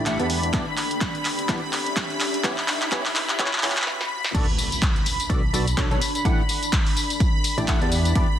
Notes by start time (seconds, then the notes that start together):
Already playing: D4 A4 G5 B5, riser
0.06 A1 A3 D4 E4 G4 F#5, clap, closed hi-hat
0.19 E2 E3 B3 D4 E4 G4 D5, closed hi-hat
0.30 open hi-hat
0.43 closed hi-hat
0.53 E2 E3 B3 D4 E4 G4 D5, kick, clap, closed hi-hat
0.77 clap, open hi-hat
0.91 closed hi-hat
1.01 kick, clap, closed hi-hat
1.15 E5, closed hi-hat
1.25 clap, open hi-hat
1.39 closed hi-hat
1.49 E2 E3 B3 D4 E4 G4 D5, kick, clap, closed hi-hat
1.73 clap, open hi-hat
1.86 closed hi-hat
1.96 kick, clap, closed hi-hat
2.10 closed hi-hat
2.20 C#4, clap, open hi-hat
2.34 closed hi-hat
2.44 C#2 E3 B3 C#4 E4 G4 C#5, kick, clap, closed hi-hat
2.58 clap
2.68 clap, open hi-hat
2.79 B4, clap, closed hi-hat
2.92 C#2 E3 B3 C#4 E4 G4 C#5, kick, clap, closed hi-hat
3.05 clap, open hi-hat
3.16 clap, open hi-hat
3.29 clap, closed hi-hat
3.39 C#2 E3 B3 C#4 E4 G4 C#5, kick, clap, closed hi-hat
3.46 clap
3.53 clap
3.58 clap
3.63 C#2 E3 B3 C#4 E4 G4 C#5, clap, open hi-hat
3.70 clap
3.77 clap, closed hi-hat
3.82 clap
3.87 snare
4.01 snare
4.24 snare
4.34 B1 B2 B3 D4 F#4 A4 D5 B5, kick, closed hi-hat, tambourine, crash, impact
4.56 A5, open hi-hat, tambourine
4.72 closed hi-hat, tambourine
4.82 kick, clap, closed hi-hat
4.96 closed hi-hat
5.06 open hi-hat, tambourine
5.20 closed hi-hat, tambourine
5.30 B1 B2 B3 D4 F#4 A4 D5, kick, closed hi-hat, tambourine
5.54 B1 B2 B3 D4 F#4 A4 D5, open hi-hat, tambourine
5.67 closed hi-hat, tambourine
5.77 B1 B2 B3 D4 F#4 A4 C#5, kick, clap, closed hi-hat
5.91 B1 B2 B3 D4 F#4 A4 C#5, closed hi-hat
6.01 open hi-hat, tambourine
6.15 closed hi-hat, tambourine
6.25 A1 A2 A3 D4 E4 G4 F#5, kick, closed hi-hat, tambourine
6.45 A4
6.49 open hi-hat, tambourine
6.63 closed hi-hat, tambourine
6.73 kick, clap, closed hi-hat
6.80 G5
6.87 open hi-hat
6.97 open hi-hat, tambourine
7.10 closed hi-hat, tambourine
7.20 kick, closed hi-hat, tambourine
7.44 open hi-hat, tambourine
7.58 A1 A2 A3 D4 E4 G4 D5, closed hi-hat, tambourine
7.68 A1 A3 D4 E4 G4 F#5, kick, clap, closed hi-hat, tambourine
7.81 E2 E3 B3 D4 E4 G4 D5, closed hi-hat
7.92 E4, open hi-hat, tambourine
8.05 closed hi-hat, tambourine
8.15 E2 E3 B3 D4 E4 G4 D5, kick, closed hi-hat, tambourine
8.33 D5